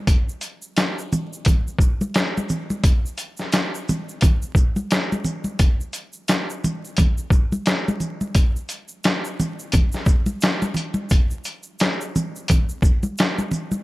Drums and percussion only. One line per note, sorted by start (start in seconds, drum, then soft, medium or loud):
0.07 kick loud
0.07 closed hi-hat medium
0.07 shaker medium
0.29 shaker soft
0.41 closed hi-hat soft
0.41 shaker soft
0.62 shaker soft
0.77 snare loud
0.77 closed hi-hat medium
0.77 shaker medium
0.99 shaker soft
1.12 high conga soft
1.12 low conga medium
1.12 shaker medium
1.12 shaker soft
1.33 shaker medium
1.45 kick medium
1.45 closed hi-hat medium
1.45 high conga soft
1.45 low conga medium
1.45 shaker medium
1.67 shaker soft
1.79 kick medium
1.79 shaker soft
2.01 high conga medium
2.01 shaker soft
2.14 snare loud
2.14 closed hi-hat medium
2.14 shaker medium
2.37 high conga medium
2.37 shaker soft
2.49 low conga medium
2.49 shaker medium
2.49 shaker soft
2.70 high conga medium
2.70 shaker soft
2.84 kick loud
2.84 closed hi-hat medium
2.84 shaker medium
3.06 shaker soft
3.18 closed hi-hat medium
3.18 shaker soft
3.37 snare soft
3.37 shaker soft
3.52 snare loud
3.52 closed hi-hat medium
3.52 shaker medium
3.75 shaker soft
3.88 high conga soft
3.88 low conga medium
3.88 shaker medium
3.88 shaker soft
4.09 shaker medium
4.21 kick medium
4.21 closed hi-hat medium
4.21 high conga soft
4.21 low conga medium
4.21 shaker medium
4.42 shaker soft
4.55 kick medium
4.55 shaker soft
4.76 high conga medium
4.76 shaker soft
4.91 snare loud
4.91 closed hi-hat medium
4.91 shaker medium
5.12 high conga medium
5.12 shaker soft
5.24 low conga medium
5.24 shaker soft
5.44 high conga medium
5.44 shaker soft
5.59 kick loud
5.59 closed hi-hat medium
5.59 shaker medium
5.80 shaker soft
5.93 closed hi-hat soft
5.93 shaker soft
6.13 shaker soft
6.28 snare medium
6.28 closed hi-hat medium
6.28 shaker medium
6.50 shaker soft
6.64 high conga soft
6.64 low conga medium
6.64 shaker medium
6.64 shaker soft
6.85 shaker soft
6.97 kick medium
6.97 closed hi-hat medium
6.97 high conga soft
6.97 low conga medium
6.97 shaker medium
7.18 shaker soft
7.30 kick medium
7.30 shaker soft
7.52 high conga medium
7.52 shaker soft
7.66 snare loud
7.66 closed hi-hat medium
7.66 shaker medium
7.88 high conga medium
7.88 shaker soft
8.00 low conga medium
8.00 shaker soft
8.00 shaker medium
8.21 high conga medium
8.21 shaker soft
8.35 kick loud
8.35 closed hi-hat medium
8.35 shaker medium
8.56 shaker soft
8.69 closed hi-hat soft
8.69 shaker medium
8.69 shaker soft
8.88 shaker soft
9.04 snare loud
9.04 closed hi-hat medium
9.04 shaker medium
9.25 shaker soft
9.40 high conga soft
9.40 low conga medium
9.40 shaker soft
9.59 shaker soft
9.72 kick medium
9.72 closed hi-hat medium
9.72 high conga soft
9.72 low conga medium
9.72 shaker medium
9.92 snare soft
9.92 shaker soft
10.06 kick medium
10.06 shaker medium
10.08 shaker soft
10.26 high conga medium
10.26 shaker soft
10.41 snare loud
10.41 closed hi-hat medium
10.41 shaker medium
10.62 high conga medium
10.62 shaker soft
10.74 closed hi-hat medium
10.74 low conga medium
10.74 shaker soft
10.77 shaker soft
10.94 high conga medium
10.94 shaker soft
11.09 kick loud
11.09 closed hi-hat medium
11.09 shaker medium
11.31 shaker soft
11.44 closed hi-hat soft
11.44 shaker soft
11.63 shaker soft
11.79 snare loud
11.79 closed hi-hat medium
11.79 shaker medium
12.01 shaker soft
12.16 high conga soft
12.16 low conga medium
12.16 shaker soft
12.16 shaker medium
12.36 shaker soft
12.48 kick medium
12.48 closed hi-hat medium
12.48 high conga soft
12.48 low conga medium
12.48 shaker medium
12.69 shaker soft
12.82 kick medium
12.82 shaker soft
12.84 shaker soft
13.03 high conga medium
13.03 shaker soft
13.18 snare loud
13.18 closed hi-hat medium
13.18 shaker medium
13.38 high conga medium
13.38 shaker soft
13.51 low conga medium
13.51 shaker soft
13.53 shaker soft
13.71 high conga medium
13.71 shaker soft